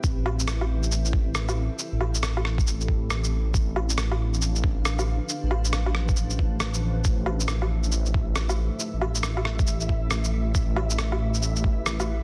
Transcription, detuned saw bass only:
X:1
M:4/4
L:1/16
Q:"Swing 16ths" 1/4=137
K:C
V:1 name="Detuned saw bass" clef=bass
A,,,12- A,,,3 z | z A,,,6- A,,, A,,,8 | A,,,12- A,,,3 z | z A,,,6- A,,, A,,,6 A,,,2 |
A,,,12- A,,,3 z | z A,,,6- A,,, A,,,8 | A,,,12- A,,,3 z |]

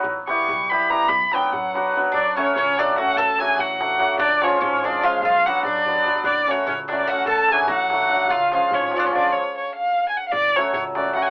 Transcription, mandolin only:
X:1
M:5/8
L:1/16
Q:1/4=146
K:Bm
V:1 name="Mandolin"
z8 z2 | z8 z2 | [K:F#m] D2 C2 C2 D2 F2 | A2 G2 F6 |
D2 C2 C2 D2 ^E2 | ^E2 F2 D6 | D2 C2 C2 D2 F2 | A2 G2 F6 |
^E2 E2 C2 C/2 D/2 C D2 | z8 z2 | z8 z2 |]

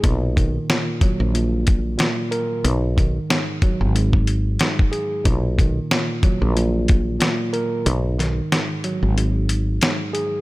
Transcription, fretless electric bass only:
X:1
M:4/4
L:1/16
Q:"Swing 16ths" 1/4=92
K:G#m
V:1 name="Fretless electric bass" clef=bass
B,,,4 z3 A,,,4- A,,, z4 | B,,,4 z3 G,,,4- G,,, z4 | B,,,4 z3 A,,,4- A,,, z4 | B,,,4 z3 G,,,4- G,,, z4 |]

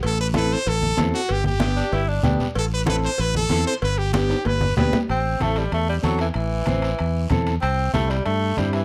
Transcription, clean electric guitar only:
X:1
M:4/4
L:1/8
Q:1/4=190
K:Am
V:1 name="Clean electric guitar"
z2 [CEA] z3 [CEA] z | z2 [B,DG] z3 [B,DG] z | z2 [CEA] z3 [CEA] z | z2 [B,DG] z3 [B,DG] z |
z2 [CEA] z3 [CEA] z | z2 [CEc] z3 [CEA] z | z2 [CEG] z3 [CEG] z |]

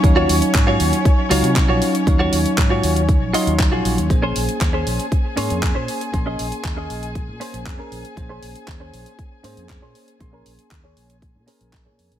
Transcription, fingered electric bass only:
X:1
M:4/4
L:1/16
Q:1/4=118
K:Bbm
V:1 name="Fingered electric bass" clef=bass
E,,2 E,, z A,,2 E,, z3 D,, C,2 B,,, z2 | E,,2 E,, z A,,2 E,,3 B,,, z E,,2 B,,, B,,, E,, | B,,,2 B,,, z E,,2 B,,, z3 A,, F,,2 B,, z2 | B,,,2 B,,, z E,,2 B,,,3 B,, z B,,, F,, z B,,, z |
B,,,2 B,,, z E,,2 B,,, z3 A,, F,,2 B,, z2 | B,,,2 B,,, z E,,2 B,,,3 B,, z B,,,2 B,, F,, B,,, |]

